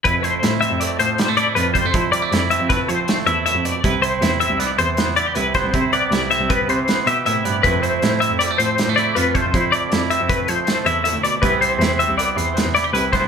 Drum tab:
HH |xxxxxxxxxx|xxxxxxxxxx|xxxxxxxxxx|xxxxxxxxxx|
SD |--o---o---|--o-o-o---|--o-o-o--o|--oo--o---|
BD |o--------o|o---o-----|o--------o|o---o-----|

HH |xxxxxxxxxx|xxxxxxxxxx|xxxxxxxxxx|
SD |--o---o---|--o---o---|--o---oo-o|
BD |o--------o|o---o-----|o--------o|